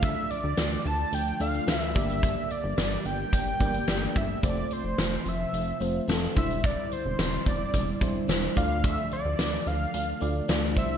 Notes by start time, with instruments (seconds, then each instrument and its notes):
Already playing: analog synth bass D2, string machine D3 F3 A3 F4, fm electric piano A3 D4 F4 D5
0.03 analog synth lead E5, kick, closed hi-hat
0.31 analog synth lead D5, closed hi-hat
0.44 analog synth bass D2
0.57 analog synth bass D2, snare, closed hi-hat
0.85 analog synth bass D2, analog synth lead A5, closed hi-hat
1.13 analog synth bass D2, analog synth lead G5, closed hi-hat
1.40 analog synth bass D2, fm electric piano A3 D4 F4 D5, analog synth lead F5, closed hi-hat
1.54 closed hi-hat
1.67 analog synth bass D2, fm electric piano A3 D4 F4 E5, snare, closed hi-hat
1.78 analog synth lead E5
1.94 analog synth bass G1, string machine G3 A#3 G4, fm electric piano A#3 D4 G4 D5, analog synth lead E5, kick, closed hi-hat
2.10 closed hi-hat
2.23 kick, closed hi-hat
2.50 analog synth lead D5, closed hi-hat
2.64 analog synth bass G1
2.78 analog synth bass G1, snare, closed hi-hat
3.05 analog synth bass G1, analog synth lead G5, closed hi-hat
3.33 analog synth bass G1, kick, closed hi-hat
3.60 analog synth bass G1, fm electric piano A#3 D4 G4 D5, kick, closed hi-hat
3.74 closed hi-hat
3.87 analog synth bass G1, fm electric piano A3 D4 G4 D5, snare, closed hi-hat
3.94 fm electric piano A#3
4.16 analog synth bass G1, analog synth lead E5, kick, closed hi-hat
4.43 analog synth bass F1, string machine C3 F3 A3 F4, fm electric piano A3 C4 F4 C5, analog synth lead D5, kick, closed hi-hat
4.71 analog synth lead C5, closed hi-hat
4.84 analog synth bass F1
4.98 analog synth bass F1, snare, closed hi-hat
5.26 analog synth bass F1, analog synth lead E5, closed hi-hat
5.53 analog synth bass F1, closed hi-hat
5.80 analog synth bass F1, fm electric piano A3 C4 F4 C5, closed hi-hat
6.08 analog synth bass F1, fm electric piano A3 C4 F4 A4, snare, closed hi-hat
6.35 analog synth bass E1, string machine D3 G3 C4 E4, fm electric piano G3 D4 E4 C5, analog synth lead E5, kick, closed hi-hat
6.51 closed hi-hat
6.64 analog synth lead D5, kick, closed hi-hat
6.92 analog synth lead C5, closed hi-hat
7.05 analog synth bass E1
7.19 analog synth bass E1, snare, closed hi-hat
7.46 analog synth bass E1, analog synth lead D5, kick, closed hi-hat
7.74 analog synth bass E1, kick, closed hi-hat
8.01 analog synth bass E1, fm electric piano G3 D4 E4 C5, kick, closed hi-hat
8.28 analog synth bass E1, fm electric piano G3 D4 E4 C5, snare, closed hi-hat
8.55 analog synth bass D2, string machine D3 F3, fm electric piano A3 D4 F4 D5, analog synth lead F5, kick, closed hi-hat
8.84 analog synth lead E5, kick, closed hi-hat
9.12 analog synth lead D5, closed hi-hat
9.25 analog synth bass D2
9.39 analog synth bass D2, snare, closed hi-hat
9.66 analog synth bass D2, analog synth lead F5, closed hi-hat
9.94 analog synth bass D2, closed hi-hat
10.20 analog synth bass D2, fm electric piano A3 D4 F4 D5, closed hi-hat
10.48 analog synth bass D2, fm electric piano A3 D4 F4 D5, snare, closed hi-hat
10.76 analog synth bass C2, string machine D3 C4, fm electric piano G3 D4 E4 C5, analog synth lead E5, kick, closed hi-hat